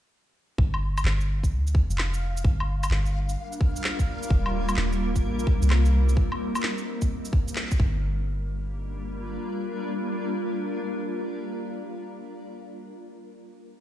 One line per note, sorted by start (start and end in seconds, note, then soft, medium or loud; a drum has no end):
0.58 1.03 G1 medium
0.58 6.18 F5 medium
0.58 kick loud
0.74 low woodblock soft
0.98 low woodblock medium
0.98 shaker medium
1.04 1.52 G1 loud
1.04 clap loud
1.21 shaker soft
1.44 kick medium
1.44 shaker medium
1.51 1.88 D2 medium
1.67 shaker soft
1.75 kick loud
1.90 2.43 F1 medium
1.90 shaker medium
1.98 clap loud
1.98 low woodblock soft
2.14 shaker soft
2.37 shaker medium
2.44 2.90 G1 medium
2.44 6.17 G3 medium
2.44 kick loud
2.60 4.30 D4 medium
2.60 low woodblock soft
2.74 6.16 A#3 medium
2.83 6.17 A#4 medium
2.83 low woodblock medium
2.83 shaker medium
2.90 3.36 G1 medium
2.90 clap loud
3.05 5.07 F4 medium
3.05 shaker soft
3.29 shaker medium
3.52 shaker soft
3.61 kick loud
3.76 shaker medium
3.84 clap loud
3.99 kick medium
3.99 shaker soft
4.23 shaker medium
4.30 4.76 D#1 medium
4.30 kick loud
4.46 low woodblock soft
4.69 low woodblock medium
4.69 shaker medium
4.76 5.25 D#1 loud
4.76 6.17 C4 medium
4.76 6.17 D#4 medium
4.76 clap loud
4.93 shaker soft
5.16 kick medium
5.16 shaker medium
5.24 5.60 A#1 medium
5.39 shaker soft
5.47 kick loud
5.62 6.15 C2 medium
5.62 shaker medium
5.70 clap loud
5.70 low woodblock soft
5.86 shaker soft
6.09 shaker medium
6.17 kick loud
6.32 low woodblock soft
6.55 low woodblock medium
6.55 shaker medium
6.63 clap loud
6.78 shaker soft
7.02 kick medium
7.02 shaker medium
7.25 shaker soft
7.33 kick loud
7.48 shaker medium
7.56 clap loud
7.71 kick medium
7.71 shaker soft
7.80 9.38 G1 medium
7.80 10.99 G3 medium
7.80 kick loud
7.90 11.09 A#3 medium
8.21 11.40 D4 medium
8.25 11.44 F4 medium
8.33 11.52 A#4 medium